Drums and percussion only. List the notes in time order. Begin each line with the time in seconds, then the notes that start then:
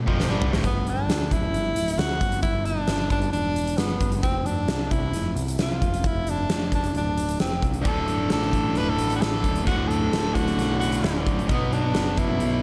0.08 kick
0.20 snare
0.42 floor tom
0.53 snare
0.64 kick, closed hi-hat
0.87 closed hi-hat
1.10 snare, closed hi-hat
1.31 kick, closed hi-hat
1.54 closed hi-hat
1.76 closed hi-hat
1.88 closed hi-hat
1.99 snare, closed hi-hat
2.21 kick, closed hi-hat
2.32 closed hi-hat
2.43 kick, closed hi-hat
2.66 closed hi-hat
2.87 snare, closed hi-hat
3.10 kick, closed hi-hat
3.22 closed hi-hat
3.33 closed hi-hat
3.56 closed hi-hat
3.67 closed hi-hat
3.78 snare, closed hi-hat
4.01 kick, closed hi-hat
4.12 closed hi-hat
4.23 kick, closed hi-hat
4.46 closed hi-hat
4.68 snare, closed hi-hat
4.91 kick, closed hi-hat
5.13 snare, closed hi-hat
5.37 closed hi-hat
5.48 closed hi-hat
5.59 snare, closed hi-hat
5.82 kick, closed hi-hat
5.94 closed hi-hat
6.04 kick, closed hi-hat
6.27 closed hi-hat
6.50 snare, closed hi-hat
6.72 kick, closed hi-hat
6.84 closed hi-hat
6.95 closed hi-hat
7.18 closed hi-hat
7.29 closed hi-hat
7.40 snare, closed hi-hat
7.62 kick, closed hi-hat
7.74 closed hi-hat
7.85 kick, closed hi-hat
8.08 closed hi-hat
8.30 snare, closed hi-hat
8.53 kick, closed hi-hat
8.75 snare, closed hi-hat
8.99 closed hi-hat
9.10 closed hi-hat
9.22 snare, closed hi-hat
9.44 kick, closed hi-hat
9.56 closed hi-hat
9.67 kick, closed hi-hat
9.91 closed hi-hat
10.13 snare, closed hi-hat
10.35 kick, closed hi-hat
10.48 closed hi-hat
10.59 snare, closed hi-hat
10.81 closed hi-hat
10.92 closed hi-hat
11.04 snare, closed hi-hat
11.27 kick, closed hi-hat
11.39 closed hi-hat
11.49 kick, closed hi-hat
11.73 closed hi-hat
11.94 snare, closed hi-hat
12.17 kick, closed hi-hat
12.40 closed hi-hat